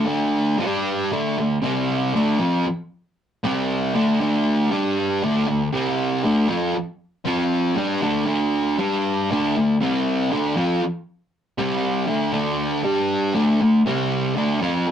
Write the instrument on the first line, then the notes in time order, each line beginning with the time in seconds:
distorted electric guitar
0.05 D3 A3 D4
0.59 G3 D4 G4
1.12 D3 A3 D4
1.38 D3 A3
1.62 C3 G3 C4
2.14 D3 A3 D4
2.39 F3 C4 F4
3.43 C3 G3 C4
3.94 D3 A3 D4
4.20 D3 A3 D4
4.71 G3 D4 G4
5.23 D3 A3 D4
5.47 D3 A3
5.72 C3 G3 C4
6.24 D3 A3 D4
6.48 F3 C4 F4
7.25 F3 C4 F4
7.76 G3 D4 G4
8.01 D3 A3 D4
8.26 D3 A3 D4
8.78 G3 D4 G4
9.30 D3 A3 D4
9.57 D3 A3
9.81 C3 G3 C4
10.32 D3 A3 D4
10.56 F3 C4 F4
11.58 C3 G3 C4
12.07 D3 A3 D4
12.32 D3 A3 D4
12.84 G3 D4 G4
13.34 D3 A3 D4
13.61 D3 A3
13.86 C3 G3 C4
14.36 D3 A3 D4
14.61 F3 C4 F4